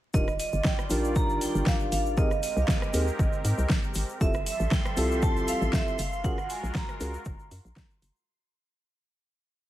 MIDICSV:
0, 0, Header, 1, 7, 480
1, 0, Start_track
1, 0, Key_signature, -3, "major"
1, 0, Tempo, 508475
1, 134, Time_signature, 4, 2, 24, 8
1, 9150, End_track
2, 0, Start_track
2, 0, Title_t, "String machine"
2, 0, Program_c, 0, 50
2, 3974, Note_on_c, 0, 84, 84
2, 7824, Note_off_c, 0, 84, 0
2, 9150, End_track
3, 0, Start_track
3, 0, Title_t, "Vibraphone"
3, 0, Program_c, 1, 11
3, 133, Note_on_c, 1, 75, 96
3, 241, Note_off_c, 1, 75, 0
3, 373, Note_on_c, 1, 75, 97
3, 614, Note_on_c, 1, 79, 97
3, 621, Note_off_c, 1, 75, 0
3, 1060, Note_off_c, 1, 79, 0
3, 1094, Note_on_c, 1, 82, 117
3, 1334, Note_on_c, 1, 79, 99
3, 1341, Note_off_c, 1, 82, 0
3, 1574, Note_on_c, 1, 77, 98
3, 1581, Note_off_c, 1, 79, 0
3, 1802, Note_off_c, 1, 77, 0
3, 1814, Note_on_c, 1, 77, 96
3, 2054, Note_on_c, 1, 75, 101
3, 2061, Note_off_c, 1, 77, 0
3, 2282, Note_off_c, 1, 75, 0
3, 2294, Note_on_c, 1, 75, 97
3, 2374, Note_off_c, 1, 75, 0
3, 2473, Note_on_c, 1, 77, 65
3, 2534, Note_off_c, 1, 77, 0
3, 2534, Note_on_c, 1, 75, 78
3, 3456, Note_off_c, 1, 75, 0
3, 3975, Note_on_c, 1, 76, 86
3, 4204, Note_off_c, 1, 76, 0
3, 4215, Note_on_c, 1, 76, 86
3, 4438, Note_off_c, 1, 76, 0
3, 4455, Note_on_c, 1, 79, 91
3, 4934, Note_on_c, 1, 81, 107
3, 4949, Note_off_c, 1, 79, 0
3, 5174, Note_on_c, 1, 77, 92
3, 5181, Note_off_c, 1, 81, 0
3, 5414, Note_on_c, 1, 76, 100
3, 5421, Note_off_c, 1, 77, 0
3, 5654, Note_on_c, 1, 77, 93
3, 5661, Note_off_c, 1, 76, 0
3, 5894, Note_on_c, 1, 78, 106
3, 5901, Note_off_c, 1, 77, 0
3, 6134, Note_on_c, 1, 80, 103
3, 6141, Note_off_c, 1, 78, 0
3, 6242, Note_off_c, 1, 80, 0
3, 6374, Note_on_c, 1, 82, 103
3, 7296, Note_off_c, 1, 82, 0
3, 9150, End_track
4, 0, Start_track
4, 0, Title_t, "Tine electric piano"
4, 0, Program_c, 2, 4
4, 130, Note_on_c, 2, 62, 77
4, 131, Note_on_c, 2, 63, 70
4, 134, Note_on_c, 2, 65, 72
4, 136, Note_on_c, 2, 67, 74
4, 138, Note_on_c, 2, 70, 91
4, 239, Note_off_c, 2, 62, 0
4, 240, Note_off_c, 2, 63, 0
4, 241, Note_off_c, 2, 65, 0
4, 242, Note_off_c, 2, 67, 0
4, 243, Note_off_c, 2, 70, 0
4, 845, Note_on_c, 2, 62, 87
4, 850, Note_on_c, 2, 63, 77
4, 854, Note_on_c, 2, 65, 78
4, 858, Note_on_c, 2, 67, 75
4, 862, Note_on_c, 2, 70, 93
4, 2023, Note_off_c, 2, 62, 0
4, 2025, Note_off_c, 2, 63, 0
4, 2027, Note_off_c, 2, 65, 0
4, 2029, Note_off_c, 2, 67, 0
4, 2031, Note_off_c, 2, 70, 0
4, 2050, Note_on_c, 2, 60, 98
4, 2052, Note_on_c, 2, 63, 95
4, 2054, Note_on_c, 2, 67, 88
4, 2056, Note_on_c, 2, 68, 93
4, 2058, Note_on_c, 2, 70, 108
4, 2159, Note_off_c, 2, 60, 0
4, 2160, Note_off_c, 2, 63, 0
4, 2161, Note_off_c, 2, 67, 0
4, 2162, Note_off_c, 2, 68, 0
4, 2163, Note_off_c, 2, 70, 0
4, 2770, Note_on_c, 2, 60, 84
4, 2772, Note_on_c, 2, 63, 74
4, 2774, Note_on_c, 2, 67, 75
4, 2776, Note_on_c, 2, 68, 69
4, 2778, Note_on_c, 2, 70, 89
4, 2879, Note_off_c, 2, 60, 0
4, 2880, Note_off_c, 2, 63, 0
4, 2881, Note_off_c, 2, 67, 0
4, 2882, Note_off_c, 2, 68, 0
4, 2883, Note_off_c, 2, 70, 0
4, 3970, Note_on_c, 2, 60, 82
4, 3972, Note_on_c, 2, 64, 73
4, 3974, Note_on_c, 2, 65, 74
4, 3976, Note_on_c, 2, 67, 75
4, 3978, Note_on_c, 2, 69, 88
4, 4079, Note_off_c, 2, 60, 0
4, 4080, Note_off_c, 2, 64, 0
4, 4081, Note_off_c, 2, 65, 0
4, 4082, Note_off_c, 2, 67, 0
4, 4083, Note_off_c, 2, 69, 0
4, 4686, Note_on_c, 2, 60, 85
4, 4690, Note_on_c, 2, 64, 77
4, 4694, Note_on_c, 2, 65, 77
4, 4698, Note_on_c, 2, 67, 76
4, 4702, Note_on_c, 2, 69, 99
4, 5636, Note_off_c, 2, 60, 0
4, 5638, Note_off_c, 2, 64, 0
4, 5640, Note_off_c, 2, 65, 0
4, 5642, Note_off_c, 2, 67, 0
4, 5644, Note_off_c, 2, 69, 0
4, 5889, Note_on_c, 2, 61, 102
4, 5891, Note_on_c, 2, 65, 94
4, 5894, Note_on_c, 2, 66, 94
4, 5896, Note_on_c, 2, 68, 94
4, 5898, Note_on_c, 2, 70, 107
4, 5999, Note_off_c, 2, 61, 0
4, 6000, Note_off_c, 2, 65, 0
4, 6001, Note_off_c, 2, 66, 0
4, 6002, Note_off_c, 2, 68, 0
4, 6003, Note_off_c, 2, 70, 0
4, 6609, Note_on_c, 2, 61, 77
4, 6611, Note_on_c, 2, 65, 74
4, 6613, Note_on_c, 2, 66, 71
4, 6615, Note_on_c, 2, 68, 73
4, 6617, Note_on_c, 2, 70, 94
4, 6719, Note_off_c, 2, 61, 0
4, 6720, Note_off_c, 2, 65, 0
4, 6721, Note_off_c, 2, 66, 0
4, 6722, Note_off_c, 2, 68, 0
4, 6723, Note_off_c, 2, 70, 0
4, 9150, End_track
5, 0, Start_track
5, 0, Title_t, "Analog synth pad"
5, 0, Program_c, 3, 89
5, 134, Note_on_c, 3, 51, 73
5, 134, Note_on_c, 3, 55, 86
5, 134, Note_on_c, 3, 65, 79
5, 134, Note_on_c, 3, 74, 89
5, 2035, Note_off_c, 3, 51, 0
5, 2035, Note_off_c, 3, 55, 0
5, 2035, Note_off_c, 3, 65, 0
5, 2035, Note_off_c, 3, 74, 0
5, 2054, Note_on_c, 3, 56, 84
5, 2054, Note_on_c, 3, 60, 78
5, 2054, Note_on_c, 3, 67, 79
5, 2054, Note_on_c, 3, 70, 91
5, 3954, Note_off_c, 3, 70, 0
5, 3955, Note_off_c, 3, 56, 0
5, 3955, Note_off_c, 3, 60, 0
5, 3955, Note_off_c, 3, 67, 0
5, 3974, Note_on_c, 3, 53, 77
5, 3974, Note_on_c, 3, 55, 82
5, 3974, Note_on_c, 3, 69, 92
5, 3974, Note_on_c, 3, 76, 75
5, 5637, Note_off_c, 3, 53, 0
5, 5637, Note_off_c, 3, 55, 0
5, 5637, Note_off_c, 3, 69, 0
5, 5637, Note_off_c, 3, 76, 0
5, 5654, Note_on_c, 3, 56, 89
5, 5654, Note_on_c, 3, 65, 80
5, 5654, Note_on_c, 3, 66, 82
5, 5654, Note_on_c, 3, 70, 95
5, 7792, Note_off_c, 3, 56, 0
5, 7792, Note_off_c, 3, 65, 0
5, 7792, Note_off_c, 3, 66, 0
5, 7792, Note_off_c, 3, 70, 0
5, 9150, End_track
6, 0, Start_track
6, 0, Title_t, "FM bass"
6, 0, Program_c, 4, 39
6, 133, Note_on_c, 4, 27, 98
6, 425, Note_off_c, 4, 27, 0
6, 502, Note_on_c, 4, 31, 95
6, 572, Note_off_c, 4, 31, 0
6, 854, Note_on_c, 4, 34, 96
6, 1385, Note_off_c, 4, 34, 0
6, 1462, Note_on_c, 4, 31, 104
6, 1532, Note_off_c, 4, 31, 0
6, 1813, Note_on_c, 4, 32, 100
6, 2345, Note_off_c, 4, 32, 0
6, 2422, Note_on_c, 4, 36, 105
6, 2492, Note_off_c, 4, 36, 0
6, 2773, Note_on_c, 4, 39, 94
6, 2930, Note_off_c, 4, 39, 0
6, 3013, Note_on_c, 4, 32, 96
6, 3094, Note_off_c, 4, 32, 0
6, 3253, Note_on_c, 4, 44, 91
6, 3334, Note_off_c, 4, 44, 0
6, 3382, Note_on_c, 4, 36, 100
6, 3452, Note_off_c, 4, 36, 0
6, 3733, Note_on_c, 4, 32, 90
6, 3814, Note_off_c, 4, 32, 0
6, 3974, Note_on_c, 4, 29, 96
6, 4265, Note_off_c, 4, 29, 0
6, 4342, Note_on_c, 4, 33, 103
6, 4412, Note_off_c, 4, 33, 0
6, 4693, Note_on_c, 4, 36, 94
6, 5225, Note_off_c, 4, 36, 0
6, 5302, Note_on_c, 4, 33, 104
6, 5372, Note_off_c, 4, 33, 0
6, 5653, Note_on_c, 4, 30, 99
6, 6185, Note_off_c, 4, 30, 0
6, 6262, Note_on_c, 4, 34, 104
6, 6332, Note_off_c, 4, 34, 0
6, 6613, Note_on_c, 4, 37, 96
6, 6770, Note_off_c, 4, 37, 0
6, 6853, Note_on_c, 4, 30, 91
6, 6934, Note_off_c, 4, 30, 0
6, 7093, Note_on_c, 4, 42, 101
6, 7174, Note_off_c, 4, 42, 0
6, 7222, Note_on_c, 4, 34, 103
6, 7292, Note_off_c, 4, 34, 0
6, 7573, Note_on_c, 4, 30, 92
6, 7654, Note_off_c, 4, 30, 0
6, 9150, End_track
7, 0, Start_track
7, 0, Title_t, "Drums"
7, 132, Note_on_c, 9, 82, 58
7, 133, Note_on_c, 9, 36, 119
7, 226, Note_off_c, 9, 82, 0
7, 228, Note_off_c, 9, 36, 0
7, 262, Note_on_c, 9, 37, 64
7, 265, Note_on_c, 9, 82, 25
7, 357, Note_off_c, 9, 37, 0
7, 359, Note_off_c, 9, 82, 0
7, 374, Note_on_c, 9, 46, 108
7, 375, Note_on_c, 9, 82, 93
7, 468, Note_off_c, 9, 46, 0
7, 469, Note_off_c, 9, 82, 0
7, 496, Note_on_c, 9, 82, 37
7, 590, Note_off_c, 9, 82, 0
7, 608, Note_on_c, 9, 38, 121
7, 614, Note_on_c, 9, 36, 111
7, 615, Note_on_c, 9, 82, 51
7, 702, Note_off_c, 9, 38, 0
7, 708, Note_off_c, 9, 36, 0
7, 710, Note_off_c, 9, 82, 0
7, 743, Note_on_c, 9, 37, 86
7, 744, Note_on_c, 9, 82, 27
7, 837, Note_off_c, 9, 37, 0
7, 838, Note_off_c, 9, 82, 0
7, 849, Note_on_c, 9, 82, 91
7, 854, Note_on_c, 9, 46, 96
7, 944, Note_off_c, 9, 82, 0
7, 948, Note_off_c, 9, 46, 0
7, 985, Note_on_c, 9, 82, 42
7, 1080, Note_off_c, 9, 82, 0
7, 1090, Note_on_c, 9, 82, 57
7, 1094, Note_on_c, 9, 36, 120
7, 1185, Note_off_c, 9, 82, 0
7, 1188, Note_off_c, 9, 36, 0
7, 1223, Note_on_c, 9, 82, 28
7, 1318, Note_off_c, 9, 82, 0
7, 1333, Note_on_c, 9, 46, 107
7, 1336, Note_on_c, 9, 82, 99
7, 1428, Note_off_c, 9, 46, 0
7, 1431, Note_off_c, 9, 82, 0
7, 1464, Note_on_c, 9, 82, 43
7, 1558, Note_off_c, 9, 82, 0
7, 1568, Note_on_c, 9, 38, 115
7, 1573, Note_on_c, 9, 36, 111
7, 1580, Note_on_c, 9, 82, 48
7, 1662, Note_off_c, 9, 38, 0
7, 1668, Note_off_c, 9, 36, 0
7, 1675, Note_off_c, 9, 82, 0
7, 1697, Note_on_c, 9, 82, 25
7, 1791, Note_off_c, 9, 82, 0
7, 1814, Note_on_c, 9, 46, 93
7, 1814, Note_on_c, 9, 82, 100
7, 1908, Note_off_c, 9, 46, 0
7, 1908, Note_off_c, 9, 82, 0
7, 1947, Note_on_c, 9, 82, 38
7, 2041, Note_off_c, 9, 82, 0
7, 2051, Note_on_c, 9, 82, 58
7, 2054, Note_on_c, 9, 36, 124
7, 2145, Note_off_c, 9, 82, 0
7, 2148, Note_off_c, 9, 36, 0
7, 2180, Note_on_c, 9, 82, 29
7, 2182, Note_on_c, 9, 37, 62
7, 2275, Note_off_c, 9, 82, 0
7, 2277, Note_off_c, 9, 37, 0
7, 2293, Note_on_c, 9, 46, 110
7, 2294, Note_on_c, 9, 82, 91
7, 2388, Note_off_c, 9, 46, 0
7, 2388, Note_off_c, 9, 82, 0
7, 2426, Note_on_c, 9, 82, 38
7, 2520, Note_off_c, 9, 82, 0
7, 2528, Note_on_c, 9, 38, 122
7, 2534, Note_on_c, 9, 36, 116
7, 2544, Note_on_c, 9, 82, 52
7, 2622, Note_off_c, 9, 38, 0
7, 2628, Note_off_c, 9, 36, 0
7, 2638, Note_off_c, 9, 82, 0
7, 2663, Note_on_c, 9, 37, 79
7, 2666, Note_on_c, 9, 82, 26
7, 2757, Note_off_c, 9, 37, 0
7, 2760, Note_off_c, 9, 82, 0
7, 2771, Note_on_c, 9, 82, 94
7, 2774, Note_on_c, 9, 46, 106
7, 2865, Note_off_c, 9, 82, 0
7, 2868, Note_off_c, 9, 46, 0
7, 2903, Note_on_c, 9, 82, 41
7, 2997, Note_off_c, 9, 82, 0
7, 3014, Note_on_c, 9, 36, 124
7, 3015, Note_on_c, 9, 82, 55
7, 3108, Note_off_c, 9, 36, 0
7, 3110, Note_off_c, 9, 82, 0
7, 3140, Note_on_c, 9, 82, 26
7, 3234, Note_off_c, 9, 82, 0
7, 3253, Note_on_c, 9, 46, 108
7, 3255, Note_on_c, 9, 82, 98
7, 3348, Note_off_c, 9, 46, 0
7, 3349, Note_off_c, 9, 82, 0
7, 3382, Note_on_c, 9, 82, 41
7, 3476, Note_off_c, 9, 82, 0
7, 3488, Note_on_c, 9, 38, 125
7, 3494, Note_on_c, 9, 36, 110
7, 3495, Note_on_c, 9, 82, 60
7, 3582, Note_off_c, 9, 38, 0
7, 3588, Note_off_c, 9, 36, 0
7, 3590, Note_off_c, 9, 82, 0
7, 3621, Note_on_c, 9, 82, 28
7, 3716, Note_off_c, 9, 82, 0
7, 3722, Note_on_c, 9, 82, 93
7, 3734, Note_on_c, 9, 46, 99
7, 3816, Note_off_c, 9, 82, 0
7, 3828, Note_off_c, 9, 46, 0
7, 3862, Note_on_c, 9, 82, 41
7, 3957, Note_off_c, 9, 82, 0
7, 3974, Note_on_c, 9, 36, 127
7, 3975, Note_on_c, 9, 82, 59
7, 4068, Note_off_c, 9, 36, 0
7, 4069, Note_off_c, 9, 82, 0
7, 4092, Note_on_c, 9, 82, 26
7, 4103, Note_on_c, 9, 37, 64
7, 4187, Note_off_c, 9, 82, 0
7, 4197, Note_off_c, 9, 37, 0
7, 4214, Note_on_c, 9, 46, 112
7, 4217, Note_on_c, 9, 82, 90
7, 4308, Note_off_c, 9, 46, 0
7, 4312, Note_off_c, 9, 82, 0
7, 4338, Note_on_c, 9, 82, 38
7, 4433, Note_off_c, 9, 82, 0
7, 4448, Note_on_c, 9, 38, 113
7, 4454, Note_on_c, 9, 36, 121
7, 4459, Note_on_c, 9, 82, 51
7, 4542, Note_off_c, 9, 38, 0
7, 4548, Note_off_c, 9, 36, 0
7, 4553, Note_off_c, 9, 82, 0
7, 4579, Note_on_c, 9, 82, 29
7, 4583, Note_on_c, 9, 37, 81
7, 4673, Note_off_c, 9, 82, 0
7, 4677, Note_off_c, 9, 37, 0
7, 4690, Note_on_c, 9, 82, 99
7, 4694, Note_on_c, 9, 46, 101
7, 4784, Note_off_c, 9, 82, 0
7, 4788, Note_off_c, 9, 46, 0
7, 4828, Note_on_c, 9, 82, 41
7, 4922, Note_off_c, 9, 82, 0
7, 4929, Note_on_c, 9, 82, 58
7, 4934, Note_on_c, 9, 36, 127
7, 5024, Note_off_c, 9, 82, 0
7, 5028, Note_off_c, 9, 36, 0
7, 5066, Note_on_c, 9, 82, 28
7, 5160, Note_off_c, 9, 82, 0
7, 5173, Note_on_c, 9, 82, 105
7, 5174, Note_on_c, 9, 46, 114
7, 5268, Note_off_c, 9, 46, 0
7, 5268, Note_off_c, 9, 82, 0
7, 5302, Note_on_c, 9, 82, 43
7, 5397, Note_off_c, 9, 82, 0
7, 5408, Note_on_c, 9, 38, 123
7, 5414, Note_on_c, 9, 36, 116
7, 5419, Note_on_c, 9, 82, 58
7, 5502, Note_off_c, 9, 38, 0
7, 5508, Note_off_c, 9, 36, 0
7, 5513, Note_off_c, 9, 82, 0
7, 5548, Note_on_c, 9, 82, 28
7, 5642, Note_off_c, 9, 82, 0
7, 5652, Note_on_c, 9, 82, 97
7, 5654, Note_on_c, 9, 46, 98
7, 5746, Note_off_c, 9, 82, 0
7, 5748, Note_off_c, 9, 46, 0
7, 5784, Note_on_c, 9, 82, 43
7, 5879, Note_off_c, 9, 82, 0
7, 5894, Note_on_c, 9, 36, 127
7, 5894, Note_on_c, 9, 82, 54
7, 5988, Note_off_c, 9, 36, 0
7, 5988, Note_off_c, 9, 82, 0
7, 6023, Note_on_c, 9, 37, 62
7, 6026, Note_on_c, 9, 82, 26
7, 6117, Note_off_c, 9, 37, 0
7, 6120, Note_off_c, 9, 82, 0
7, 6134, Note_on_c, 9, 46, 109
7, 6134, Note_on_c, 9, 82, 98
7, 6228, Note_off_c, 9, 46, 0
7, 6228, Note_off_c, 9, 82, 0
7, 6271, Note_on_c, 9, 82, 40
7, 6365, Note_off_c, 9, 82, 0
7, 6368, Note_on_c, 9, 38, 115
7, 6371, Note_on_c, 9, 82, 52
7, 6373, Note_on_c, 9, 36, 116
7, 6462, Note_off_c, 9, 38, 0
7, 6466, Note_off_c, 9, 82, 0
7, 6468, Note_off_c, 9, 36, 0
7, 6499, Note_on_c, 9, 82, 26
7, 6503, Note_on_c, 9, 37, 72
7, 6593, Note_off_c, 9, 82, 0
7, 6597, Note_off_c, 9, 37, 0
7, 6613, Note_on_c, 9, 82, 103
7, 6614, Note_on_c, 9, 46, 96
7, 6708, Note_off_c, 9, 46, 0
7, 6708, Note_off_c, 9, 82, 0
7, 6739, Note_on_c, 9, 82, 46
7, 6834, Note_off_c, 9, 82, 0
7, 6846, Note_on_c, 9, 82, 60
7, 6853, Note_on_c, 9, 36, 122
7, 6940, Note_off_c, 9, 82, 0
7, 6948, Note_off_c, 9, 36, 0
7, 6981, Note_on_c, 9, 82, 25
7, 7075, Note_off_c, 9, 82, 0
7, 7093, Note_on_c, 9, 46, 113
7, 7095, Note_on_c, 9, 82, 102
7, 7188, Note_off_c, 9, 46, 0
7, 7190, Note_off_c, 9, 82, 0
7, 7225, Note_on_c, 9, 82, 41
7, 7319, Note_off_c, 9, 82, 0
7, 7328, Note_on_c, 9, 38, 121
7, 7333, Note_on_c, 9, 36, 115
7, 7337, Note_on_c, 9, 82, 57
7, 7422, Note_off_c, 9, 38, 0
7, 7428, Note_off_c, 9, 36, 0
7, 7431, Note_off_c, 9, 82, 0
7, 7461, Note_on_c, 9, 82, 28
7, 7555, Note_off_c, 9, 82, 0
7, 7573, Note_on_c, 9, 46, 99
7, 7575, Note_on_c, 9, 82, 96
7, 7668, Note_off_c, 9, 46, 0
7, 7670, Note_off_c, 9, 82, 0
7, 7705, Note_on_c, 9, 82, 41
7, 7799, Note_off_c, 9, 82, 0
7, 9150, End_track
0, 0, End_of_file